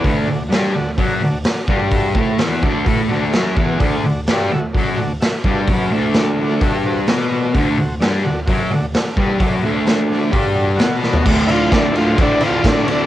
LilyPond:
<<
  \new Staff \with { instrumentName = "Transistor combo organ" } { \time 4/4 \key d \mixolydian \tempo 4 = 129 <fis' a' b'>8 <fis' a' d''>8 <fis' a' d''>8 <fis' a' d''>8 <fis' a' d''>8 <fis' a' d''>8 <fis' a' d''>8 <fis' a' d''>8 | <fis' a' e''>8 <fis' a' c''>8 <fis' a' d''>8 <fis' a' d''>8 <fis' a' b'>8 <fis' a' d''>8 <fis' a' e''>8 <fis' a' b'>8 | <fis' a' d''>8 <fis' a' d''>8 <fis' a' d''>8 <fis' a' e''>8 <fis' a' d''>8 <fis' a' d''>8 <fis' a' e''>8 <fis' a' d''>8 | <fis' a' b'>8 <fis' a' e''>8 <fis' a' d''>8 <fis' a' d''>8 <fis' a' e''>8 <fis' a' c''>8 <fis' a' d''>8 <fis' a' d''>8 |
<fis' a' c''>8 <fis' a' c''>8 <fis' a' d''>8 <fis' a' d''>8 <fis' a' c''>8 <fis' a' d''>8 <fis' a' d''>8 <fis' a' b'>8 | <fis' a' d''>8 <fis' a' d''>8 <fis' a' c''>8 <fis' a' d''>8 <fis' a' d''>8 <fis' a' d''>8 <fis' a' d'' fis''>8 <fis' a' d'' a''>8 | <fis' a' d''>8 <fis' a' d''>8 <fis' a' d''>8 <fis' a' c''>8 <fis' a' e''>8 <fis' a' d''>8 <fis' a' d''>8 <fis' a' e''>8 | }
  \new Staff \with { instrumentName = "Transistor combo organ" } { \time 4/4 \key d \mixolydian r1 | r1 | r1 | r1 |
r1 | r1 | r8 <e' f'>8 d'8 <e' f'>8 d'8 <e' f'>8 d'8 <cis' d'>8 | }
  \new Staff \with { instrumentName = "Distorted electric guitar" } { \clef bass \time 4/4 \key d \mixolydian <d, d>8 d,8 <g, g>8 d,8 <fis, fis>8 d,8 r8 <g, g>8~ | <g, g>8 <a, a>8 <e, e>8 <d, d>8 <a, a>8 <d, d>8 <fis, fis>8 <e, e>8 | <d, d>8 d,8 <g, g>8 d,8 <fis, fis>8 d,8 r8 <g, g>8 | <fis, fis>8 <d, d>4. <g, g>4 <b, b>4 |
<d, d>8 d,8 <g, g>8 d,8 <fis, fis>8 d,8 r8 <g, g>8 | <fis, fis>8 <d, d>4. <g, g>4 <b, b>4 | <d, a, d>8 <d, a, d>8 <d, a, d>8 <d, a, d>8 <d, a, d>8 <d, a, d>8 <d, a, d>8 <d, a, d>8 | }
  \new DrumStaff \with { instrumentName = "Drums" } \drummode { \time 4/4 <hho bd>4 <hho sn>4 <hho bd>4 <hho sn>8 bd8 | <hho bd>8 bd8 <hho sn>8 bd8 <hho bd>4 <hho sn>8 bd8 | <hho bd>4 <hho sn>4 <hho bd>4 <hho sn>8 bd8 | <hho bd>4 <hho sn>4 <hho bd>4 <hho sn>4 |
<hho bd>4 <hho sn>4 <hho bd>4 <hho sn>8 bd8 | <hho bd>4 <hho sn>4 <hho bd>4 <hho sn>8 sn16 tomfh16 | <cymc bd>8 cymr8 <bd cymr sn>8 cymr8 <bd cymr>8 cymr8 <bd cymr sn>8 cymr8 | }
>>